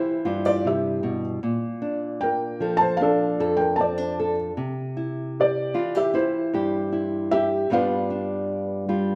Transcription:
Already playing: nylon-string guitar E3 E4 G4, felt piano E4 C5
0.25 nylon-string guitar G2 F4
0.45 felt piano F4 D5, nylon-string guitar G4
0.65 nylon-string guitar C3, felt piano G4 E5
1.03 nylon-string guitar B2
1.43 nylon-string guitar A#2
1.82 nylon-string guitar D4
2.21 felt piano A#4 G5
2.60 nylon-string guitar F3 A4
2.77 felt piano A5
2.81 felt piano C5
2.97 felt piano F5
3.01 nylon-string guitar D4, felt piano A4
3.40 nylon-string guitar F2 A4
3.57 felt piano A#4 G5
3.76 nylon-string guitar C4, felt piano A5
3.81 felt piano D5
3.98 nylon-string guitar D4
4.20 nylon-string guitar A4
4.57 nylon-string guitar C3
4.97 nylon-string guitar E4
5.40 felt piano G4 D5
5.74 nylon-string guitar E3 F4
5.95 nylon-string guitar G4, felt piano G4 E5
6.14 nylon-string guitar E4, felt piano E4 C5
6.53 nylon-string guitar G2 G4
6.92 nylon-string guitar E4
7.31 nylon-string guitar G4, felt piano G4 E5
7.70 nylon-string guitar G2 G3 B3 D4 F4, felt piano B4 F5
8.10 nylon-string guitar D4
8.89 nylon-string guitar G3 F4

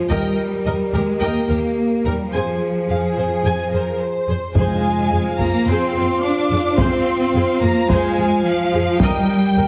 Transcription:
Already playing: cello section F3
0.10 double bass section D#2, cello section G3, french horn section G4 A#4, viola section A#4, violin section D#5 G5, taiko
0.66 double bass section D#2, viola section A#4, violin section A#4 D#5
0.93 double bass section D#2, cello section G#3, violin section G4 A#4, viola section A#4
1.21 double bass section D#2, cello section A#3, viola section A#4, violin section D#5 G5
1.49 double bass section D#2, violin section G4 A#4, viola section A#4
2.05 double bass section D#2, cello section G3, violin section G4 A#4, viola section A#4
2.33 double bass section F2, cello section F3, french horn section G#4 C5, viola section G#4, violin section C5 G#5
2.89 double bass section F2, violin section G#4 F5, viola section G#4
3.16 double bass section F2, viola section G#4, violin section C5
3.43 double bass section F2, viola section G#4, violin section G#5
3.71 double bass section F2, viola section G#4, violin section A#4 C5
4.00 violin section C5
4.27 double bass section F2, viola section G#4, violin section C5
4.54 double bass section F2, timpani F2, cello section G#3, french horn section F4 C5, viola section G#4 C5, violin section F5 G#5, taiko
5.11 double bass section F2, viola section G#4
5.39 double bass section F2, cello section A#3, viola section F4 G#4, violin section A#5, taiko
5.66 double bass section F2, cello section C4, viola section G#4 C5, violin section C6
5.94 double bass section F2, viola section F4 G#4
6.23 cello section D4, violin section D6
6.49 double bass section F2, viola section F4 G#4
6.77 double bass section F2, cello section C4, viola section G#4 C5, violin section C6, taiko
7.34 double bass section F2, viola section G#4
7.61 double bass section F2, cello section A#3, viola section F4 G#4, violin section A#5
7.89 double bass section F2, cello section G#3, viola section G#4 C5, violin section G#5, taiko
8.17 double bass section F2, viola section F4 G#4
8.45 cello section F3, violin section F5
8.73 double bass section F2, viola section F4 G#4
9.00 double bass section D#2, cello section G3, french horn section G4 A#4, viola section A#4 D#5, violin section G5, taiko
9.56 double bass section D#2, viola section A#4

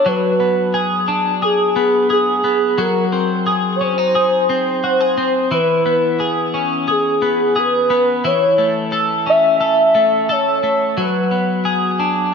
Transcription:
Already playing: clean electric guitar B3 D4 A4
0.06 clean electric guitar F#3, soft synth lead B4
0.40 clean electric guitar B3
0.74 clean electric guitar G#4
1.08 clean electric guitar D4
1.42 clean electric guitar G#4, soft synth lead G#4
1.76 clean electric guitar B3
2.10 clean electric guitar G#4, soft synth lead G#4
2.44 clean electric guitar B3
2.78 clean electric guitar F#3, soft synth lead A#4
3.12 clean electric guitar C4
3.47 clean electric guitar G#4
3.76 soft synth lead C#5
3.81 clean electric guitar C#4, soft synth lead C5
3.98 clean electric guitar D#4
4.15 clean electric guitar G#4
4.50 clean electric guitar C4
4.84 clean electric guitar F#4, soft synth lead C5
5.01 clean electric guitar G#4
5.18 clean electric guitar C4
5.51 clean electric guitar E3, soft synth lead B4
5.86 clean electric guitar B3
6.20 clean electric guitar G#4
6.54 clean electric guitar C#4
6.88 clean electric guitar G#4, soft synth lead G#4
7.22 clean electric guitar B3
7.56 clean electric guitar G#4, soft synth lead B4
7.90 clean electric guitar B3
8.24 clean electric guitar E3, soft synth lead C#5
8.58 clean electric guitar A3
8.92 clean electric guitar A4
9.27 clean electric guitar C#4, soft synth lead E5
9.61 clean electric guitar A4
9.95 clean electric guitar A3
10.29 clean electric guitar A4, soft synth lead C#5
10.63 clean electric guitar A3
10.97 clean electric guitar F#3, soft synth lead B4
11.31 clean electric guitar B3
11.65 clean electric guitar G#4
11.99 clean electric guitar D4

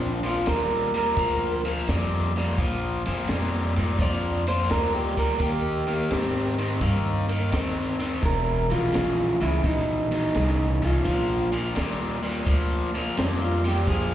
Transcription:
Already playing: upright bass A#1, overdriven electric guitar A#2 F3
0.02 clean electric guitar D4
0.23 overdriven electric guitar A#2 F3, clean electric guitar F4, snare, ride
0.46 upright bass D#2, overdriven electric guitar A#2 G3, clean electric guitar A#4, snare, ride
0.94 overdriven electric guitar A#2 G3, clean electric guitar A#4, snare, ride
1.17 upright bass D2, overdriven electric guitar A#2 F3, kick, snare, ride
1.65 overdriven electric guitar A#2 F3, snare, ride
1.88 upright bass F2, overdriven electric guitar A#2 G3, snare, ride
2.36 overdriven electric guitar A#2 G3, snare, ride
2.58 upright bass A#1, overdriven electric guitar A#2 F3, kick, snare, ride
3.06 upright bass F2, overdriven electric guitar A#2 F3, snare, ride
3.28 upright bass F2, overdriven electric guitar A#2 G3, snare, ride
3.76 upright bass G#2, overdriven electric guitar A#2 G3, snare, ride
3.98 upright bass F2, overdriven electric guitar A#2 F3, clean electric guitar D5, kick, snare, ride
4.47 overdriven electric guitar A#2 F3, clean electric guitar C5, snare, ride
4.70 upright bass D2, overdriven electric guitar A#2 G3, clean electric guitar A#4, snare, ride
4.95 clean electric guitar G4
5.17 overdriven electric guitar A#2 G3, clean electric guitar A#4, kick, snare, ride
5.39 upright bass D#2, overdriven electric guitar D#3 A#3, clean electric guitar G4, kick, ride
5.87 overdriven electric guitar D#3 A#3, snare, ride
6.11 upright bass G#2, overdriven electric guitar D#3 C4, snare, ride
6.58 overdriven electric guitar D#3 C4, snare, ride
6.81 upright bass G2, overdriven electric guitar D#3 A#3, kick, snare, ride
7.28 overdriven electric guitar D#3 A#3, snare, ride
7.52 upright bass D#2, overdriven electric guitar D#3 C4, snare, ride
7.99 overdriven electric guitar D#3 C4, snare, ride
8.21 upright bass E1, overdriven electric guitar E2 B2, kick, ride
8.25 clean electric guitar A#4
8.70 upright bass A#1, overdriven electric guitar E2 B2, clean electric guitar F4, snare, ride
8.92 upright bass A#1, overdriven electric guitar E2 C#3, snare, ride
9.41 upright bass C#2, overdriven electric guitar E2 C#3, clean electric guitar E4, snare, ride
9.63 upright bass A#1, overdriven electric guitar E2 B2, clean electric guitar D#4, kick, ride
10.11 overdriven electric guitar E2 B2, clean electric guitar D#4, snare, ride
10.35 upright bass C2, overdriven electric guitar E2 C#3, snare, ride
10.82 overdriven electric guitar E2 C#3, clean electric guitar F4, kick, snare, ride
11.04 upright bass A#1, overdriven electric guitar A#2 F3, kick, ride
11.52 overdriven electric guitar A#2 F3, snare, ride
11.75 upright bass D#2, overdriven electric guitar A#2 G3, snare, ride
12.23 overdriven electric guitar A#2 G3, snare, ride
12.46 upright bass D2, overdriven electric guitar A#2 F3, kick, snare, ride
12.95 overdriven electric guitar A#2 F3, snare, ride
13.17 upright bass F2, overdriven electric guitar A#2 G3, clean electric guitar D4, snare, ride
13.42 clean electric guitar F4
13.65 overdriven electric guitar A#2 G3, clean electric guitar G4, snare, ride
13.87 upright bass A#1, overdriven electric guitar A#2 F3, clean electric guitar G#4, kick, snare, ride

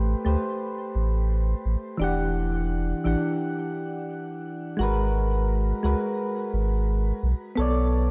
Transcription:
Already playing: sub bass A1, synth keys A3 G4 B4 C5
0.25 sub bass D2, synth keys A3 G4 B4 C5
0.95 sub bass A1
1.65 sub bass A1
1.97 sub bass E1, synth keys E3 D4
2.02 synth keys G4 F#5
3.04 sub bass A1, synth keys E3 D4 G4 F#5
4.77 sub bass G#1, synth keys G#3 F#4
4.81 synth keys A#4 B4
5.83 sub bass C#2, synth keys G#3 F#4 A#4 B4
6.53 sub bass G#1
7.23 sub bass B1
7.56 sub bass B1, synth keys B3 A4
7.60 synth keys C#5 D5

